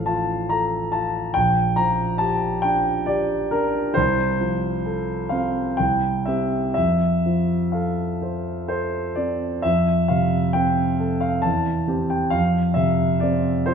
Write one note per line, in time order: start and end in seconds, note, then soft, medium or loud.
0.00 1.32 A1 soft
0.00 1.38 F3 soft
0.00 0.33 A4 soft
0.00 1.39 F5 medium
0.06 0.77 F4 soft
0.06 0.50 A5 medium
0.49 1.20 A4 soft
0.49 0.93 A#5 medium
0.92 1.36 F4 soft
0.92 1.35 A5 medium
1.34 3.93 A#1 soft
1.34 1.77 G5 medium
1.76 2.47 F3 soft
1.76 2.20 A#5 medium
2.18 2.91 G4 soft
2.18 2.63 A5 medium
2.62 3.35 D4 soft
2.62 3.08 G5 medium
3.06 3.79 G4 soft
3.06 3.52 D5 medium
3.51 3.97 D4 soft
3.51 3.96 A#4 medium
3.94 5.75 C2 soft
3.94 5.30 C5 medium
4.40 5.13 F3 soft
4.86 5.60 A4 soft
5.29 5.79 C4 soft
5.29 5.78 F5 medium
5.77 6.74 C2 soft
5.77 6.27 G5 medium
6.26 6.73 C4 soft
6.26 6.73 G4 soft
6.26 6.73 E5 medium
6.74 9.61 F2 soft
6.74 7.74 E5 medium
7.26 8.04 F3 soft
7.72 8.51 A4 soft
7.72 8.69 F5 soft
8.22 8.67 C5 soft
8.68 9.47 A4 soft
8.68 9.17 C5 medium
9.15 9.65 C4 soft
9.15 9.64 D5 medium
9.62 11.40 F2 soft
9.62 10.09 E5 medium
10.08 10.82 C3 soft
10.08 10.54 F5 medium
10.53 11.27 C4 soft
10.53 11.21 G5 medium
11.00 11.44 A4 soft
11.21 11.44 F5 medium
11.42 12.30 E2 soft
11.42 12.09 A5 medium
11.87 12.28 C4 soft
11.87 12.29 G4 soft
12.10 12.33 G5 medium
12.30 13.74 F2 soft
12.30 12.76 F5 medium
12.74 13.49 C3 soft
12.74 13.21 E5 medium
13.20 13.74 C4 soft
13.20 13.67 D5 medium
13.66 13.74 F4 soft
13.66 13.74 C5 medium